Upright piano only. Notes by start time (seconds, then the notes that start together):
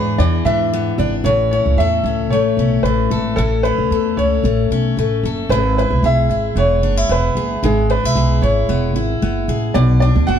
Already playing: B4
0.18 D5
0.45 E5
1.25 C#5
1.51 C#5
1.78 E5
2.30 C#5
2.83 B4
3.36 A4
3.63 B4
4.17 C#5
5.50 B4
5.78 B4
6.05 E5
6.58 C#5
7.12 B4
7.65 G#4
7.91 B4
8.42 C#5
9.74 D5
10.00 D5
10.27 F#5